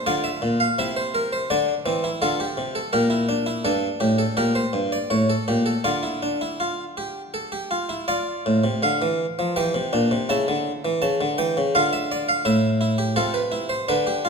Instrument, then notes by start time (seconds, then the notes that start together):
harpsichord
0.06 D3 F4 D5
0.24 E5
0.42 A#2
0.60 F5
0.78 C3 E4 E5
0.96 C5
1.15 A#4
1.33 C5
1.50 D3 D4 D5
1.86 E3 C4
2.04 E4
2.22 D3 F4 A4
2.40 G4
2.57 C3
2.75 A4
2.93 A#2 G4 A#4
3.10 E4
3.29 D4
3.46 E4
3.65 G2 D4 A4
4.00 A2 G4
4.18 A4
4.37 A#2 G4 A#4
4.55 C5
4.73 G2
4.92 D5
5.10 A2 C#5
5.30 A4
5.48 A#2 G4
5.66 A4
5.84 D3 F4 D5
6.03 E4
6.23 D4
6.41 E4
6.60 F4
6.97 G4
7.34 A4
7.52 G4
7.71 F4
7.89 E4
8.08 F4 D5
8.46 A2
8.64 C3
8.83 D3 F5
9.02 E3
9.39 F3
9.56 E3 G4 G5
9.74 C3
9.93 A#2 D4
10.11 C3
10.29 C#3 E4 A5
10.48 D3
10.85 E3
11.02 C#3 A5
11.21 D3
11.38 E3 G5
11.57 C#3
11.75 D3 F4 F5
11.93 E5
12.12 D5
12.29 F5
12.45 A2 E4 E5
12.81 E4
12.98 G4
13.16 C3 F4 A4
13.34 B4
13.52 E4
13.69 C5
13.88 D3 D4 B4
14.07 G4
14.25 F4